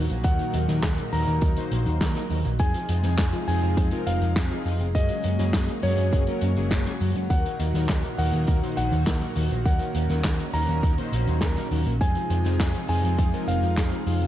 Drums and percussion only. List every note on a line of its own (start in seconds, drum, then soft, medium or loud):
0.10 closed hi-hat medium
0.10 shaker soft
0.24 kick loud
0.24 closed hi-hat medium
0.24 shaker medium
0.39 closed hi-hat medium
0.39 shaker soft
0.53 closed hi-hat loud
0.53 shaker medium
0.68 snare soft
0.68 closed hi-hat medium
0.68 shaker soft
0.83 kick loud
0.83 snare loud
0.83 clap loud
0.83 closed hi-hat medium
0.83 shaker medium
0.98 closed hi-hat medium
0.98 shaker soft
1.12 open hi-hat medium
1.12 shaker medium
1.27 closed hi-hat medium
1.27 shaker medium
1.41 kick loud
1.41 closed hi-hat medium
1.41 shaker medium
1.56 closed hi-hat medium
1.71 closed hi-hat loud
1.71 shaker medium
1.86 closed hi-hat medium
1.86 shaker soft
2.00 kick loud
2.00 snare loud
2.00 clap medium
2.00 closed hi-hat medium
2.00 shaker medium
2.15 snare soft
2.15 closed hi-hat medium
2.15 shaker soft
2.30 open hi-hat medium
2.30 shaker medium
2.45 closed hi-hat medium
2.45 shaker soft
2.59 kick loud
2.59 closed hi-hat medium
2.59 shaker medium
2.74 closed hi-hat medium
2.74 shaker soft
2.89 closed hi-hat loud
2.89 shaker medium
3.03 snare soft
3.03 closed hi-hat medium
3.03 shaker soft
3.18 kick loud
3.18 snare loud
3.18 clap loud
3.18 closed hi-hat medium
3.18 shaker medium
3.32 closed hi-hat medium
3.32 shaker soft
3.47 open hi-hat medium
3.47 shaker medium
3.62 closed hi-hat medium
3.62 shaker soft
3.77 kick loud
3.77 closed hi-hat medium
3.77 shaker medium
3.91 closed hi-hat medium
4.07 closed hi-hat loud
4.07 shaker medium
4.22 closed hi-hat medium
4.22 shaker soft
4.36 kick loud
4.36 snare loud
4.36 clap loud
4.36 closed hi-hat medium
4.36 shaker medium
4.51 closed hi-hat soft
4.51 shaker soft
4.66 open hi-hat medium
4.66 shaker medium
4.79 closed hi-hat medium
4.79 shaker soft
4.95 kick loud
4.95 closed hi-hat medium
4.95 shaker medium
5.08 closed hi-hat medium
5.08 shaker soft
5.23 closed hi-hat medium
5.23 shaker medium
5.39 snare soft
5.39 closed hi-hat medium
5.39 shaker medium
5.53 kick loud
5.53 snare loud
5.53 clap medium
5.53 closed hi-hat medium
5.53 shaker medium
5.67 closed hi-hat medium
5.67 shaker soft
5.82 open hi-hat medium
5.82 shaker medium
5.97 closed hi-hat medium
5.97 shaker soft
6.12 kick loud
6.12 closed hi-hat medium
6.12 shaker soft
6.27 closed hi-hat medium
6.41 closed hi-hat medium
6.41 shaker medium
6.56 closed hi-hat medium
6.56 shaker soft
6.71 kick loud
6.71 snare loud
6.71 clap loud
6.71 closed hi-hat medium
6.71 shaker medium
6.86 snare soft
6.86 closed hi-hat medium
6.86 shaker soft
7.01 open hi-hat medium
7.01 shaker medium
7.15 closed hi-hat medium
7.15 shaker medium
7.29 kick loud
7.29 closed hi-hat medium
7.29 shaker medium
7.46 closed hi-hat medium
7.46 shaker soft
7.60 closed hi-hat loud
7.60 shaker medium
7.74 snare soft
7.74 closed hi-hat medium
7.74 shaker soft
7.89 kick loud
7.89 snare loud
7.89 clap medium
7.89 closed hi-hat medium
7.89 shaker medium
8.04 closed hi-hat medium
8.04 shaker soft
8.18 open hi-hat medium
8.18 shaker medium
8.33 closed hi-hat medium
8.33 shaker medium
8.47 kick loud
8.47 closed hi-hat medium
8.47 shaker medium
8.63 closed hi-hat medium
8.77 closed hi-hat medium
8.77 shaker medium
8.91 closed hi-hat medium
8.91 shaker soft
9.06 kick loud
9.06 snare loud
9.06 clap medium
9.06 closed hi-hat medium
9.06 shaker medium
9.21 closed hi-hat medium
9.21 shaker soft
9.35 open hi-hat medium
9.35 shaker medium
9.51 closed hi-hat medium
9.51 shaker medium
9.65 kick loud
9.65 closed hi-hat medium
9.65 shaker medium
9.79 closed hi-hat medium
9.79 shaker soft
9.94 closed hi-hat loud
9.94 shaker medium
10.09 snare soft
10.09 closed hi-hat medium
10.09 shaker soft
10.24 kick loud
10.24 snare loud
10.24 clap loud
10.24 closed hi-hat medium
10.24 shaker medium
10.39 closed hi-hat medium
10.39 shaker soft
10.53 open hi-hat medium
10.53 shaker medium
10.68 closed hi-hat medium
10.68 shaker soft
10.83 kick loud
10.83 closed hi-hat medium
10.83 shaker medium
10.98 closed hi-hat medium
11.13 closed hi-hat medium
11.13 shaker medium
11.27 closed hi-hat medium
11.27 shaker medium
11.41 kick loud
11.41 snare loud
11.41 clap loud
11.41 closed hi-hat medium
11.41 shaker medium
11.57 snare soft
11.57 closed hi-hat medium
11.57 shaker soft
11.71 open hi-hat medium
11.71 shaker medium
11.86 closed hi-hat medium
11.86 shaker medium
12.01 kick loud
12.01 closed hi-hat medium
12.01 shaker medium
12.15 closed hi-hat medium
12.15 shaker medium
12.30 closed hi-hat loud
12.30 shaker medium
12.44 snare soft
12.44 closed hi-hat medium
12.44 shaker soft
12.59 kick loud
12.59 snare loud
12.59 clap loud
12.59 closed hi-hat medium
12.59 shaker medium
12.74 closed hi-hat medium
12.74 shaker soft
12.88 open hi-hat medium
12.88 shaker medium
13.04 closed hi-hat medium
13.04 shaker soft
13.18 kick loud
13.18 closed hi-hat medium
13.18 shaker medium
13.34 closed hi-hat medium
13.48 closed hi-hat medium
13.48 shaker medium
13.63 closed hi-hat medium
13.63 shaker soft
13.77 kick loud
13.77 snare loud
13.77 clap loud
13.77 closed hi-hat medium
13.77 shaker medium
13.92 closed hi-hat medium
13.92 shaker medium
14.07 open hi-hat medium
14.07 shaker medium
14.21 closed hi-hat medium
14.21 shaker medium